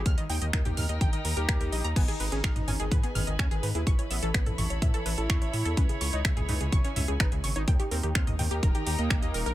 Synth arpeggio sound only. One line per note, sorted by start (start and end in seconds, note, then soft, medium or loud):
0.06 0.17 F6 loud
0.18 0.29 D#5 medium
0.30 0.38 G5 loud
0.42 0.47 D#5 medium
0.53 0.62 A#4 medium
0.65 0.77 G4 medium
0.77 0.89 F6 loud
0.89 1.00 D#5 medium
1.01 1.09 G5 loud
1.13 1.18 D#5 medium
1.25 1.33 A#4 medium
1.37 1.45 A#4 loud
1.49 1.57 A#4 loud
1.61 1.72 A#4 medium
1.72 1.81 D#5 loud
1.84 1.89 A#5 loud
1.96 2.05 G#5 loud
2.08 2.20 G#4 loud
2.20 2.28 B4 medium
2.32 2.43 G#4 medium
2.44 2.55 F6 loud
2.56 2.67 D#5 medium
2.68 2.76 G#5 loud
2.80 2.91 G#4 loud
2.92 3.00 B4 medium
3.03 3.15 G#4 medium
3.15 3.27 F6 loud
3.27 3.38 D#5 medium
3.39 3.47 G#5 loud
3.51 3.62 G#4 loud
3.63 3.71 B4 medium
3.75 3.86 G#4 medium
3.87 3.98 C#6 loud
3.99 4.10 C#5 medium
4.11 4.19 E5 loud
4.23 4.34 A4 loud
4.35 4.43 B4 medium
4.47 4.58 A4 medium
4.58 4.70 C#6 loud
4.70 4.81 C#5 medium
4.82 4.90 E5 loud
4.94 5.05 A4 loud
5.06 5.14 B4 medium
5.18 5.29 A4 medium
5.30 5.41 C#6 loud
5.42 5.53 C#5 medium
5.53 5.62 E5 loud
5.65 5.77 A4 loud
5.77 5.86 B4 medium
5.89 6.00 G#4 medium
6.01 6.12 C#6 loud
6.13 6.24 C#5 medium
6.25 6.33 E5 loud
6.37 6.48 G#4 loud
6.49 6.57 B4 medium
6.61 6.72 G#4 medium
6.72 6.84 C#6 loud
6.84 6.96 C#5 medium
6.96 7.05 E5 loud
7.08 7.19 G#4 medium
7.20 7.28 B4 medium
7.32 7.43 G#4 medium
7.44 7.55 C#6 loud
7.56 7.67 C#5 medium
7.68 7.76 G5 loud
7.79 7.91 G4 loud
7.91 8.00 A#4 medium
8.03 8.15 G4 medium
8.15 8.27 F6 loud
8.27 8.39 D#5 medium
8.39 8.47 G5 medium
8.51 8.62 G4 loud
8.63 8.71 A#4 medium
8.75 8.86 G4 medium
8.87 8.95 G4 medium
8.99 9.04 D#5 medium
9.11 9.19 G4 medium
9.22 9.34 D#5 medium
9.34 9.45 A#4 loud
9.46 9.54 A#4 loud